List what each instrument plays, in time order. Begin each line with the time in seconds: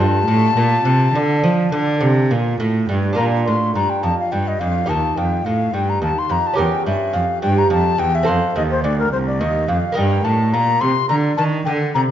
Already playing: cello G2, lute F4 A4, flute A5
0.00 lute G2
0.26 cello A2, lute A2
0.55 cello A#2, lute A#2
0.84 cello C3, lute C3
1.13 cello D3, lute D3
1.43 cello F3, lute F3
1.72 lute D3, cello D3
2.01 lute C3, cello C3
2.31 lute A#2, cello A#2
2.60 lute A2, cello A2
2.89 lute G2, cello G2
3.13 lute D4 F4 A#4
3.17 lute A#2, cello A#2, flute A#5
3.47 cello A2, lute A2, flute C6
3.75 lute G2, cello G2, flute A#5
3.90 flute G5
4.03 lute F2, cello F2, flute A5
4.20 flute F5
4.32 lute G2, cello G2, flute G5
4.48 flute D#5
4.60 lute F2, cello F2, flute F5
4.86 cello D#2, lute D#4 G4 A#4, flute A5
4.91 lute D#2
5.17 lute F2, cello F2, flute G5
5.45 cello A2, lute A2, flute F5
5.74 lute G2, cello G2, flute G5
5.89 flute A#5
6.02 lute D#2, cello D#2, flute A5
6.19 flute C6
6.30 lute F2, cello F2, flute A#5
6.47 flute A5
6.54 lute C#4 G4 A#4
6.58 lute E2, cello E2, flute G5
6.86 lute G2, cello G2, flute E5
7.13 lute F2, cello F2, flute F5
7.42 lute G2, cello G2, flute G5
7.58 flute A#5
7.70 lute F2, cello F2, flute A5
7.98 lute E2, cello E2, flute G5
8.15 flute E5
8.23 lute C4 A4 C5
8.28 lute F2, cello F2, flute F5
8.56 lute D#2, cello D#2, flute D#5
8.71 flute C5
8.84 lute D2, cello D2, flute D5
8.99 flute A#4
9.12 cello C2, flute C5
9.27 flute D5
9.40 cello D#2, lute D#2, flute D#5
9.68 lute F2, cello F2, flute F5
9.92 lute A#3 A#4 D#5
9.96 lute G2, cello G2, flute G5
10.24 lute A2, cello A2, flute A5
10.53 cello A#2, lute A#2, flute A#5
10.81 lute C3, cello C3, flute C6
11.09 lute D3, cello D3, flute A#5
11.37 cello D#3, lute D#3, flute A5
11.65 cello D3, lute D3, flute G5
11.95 cello C3, lute C3, flute A#5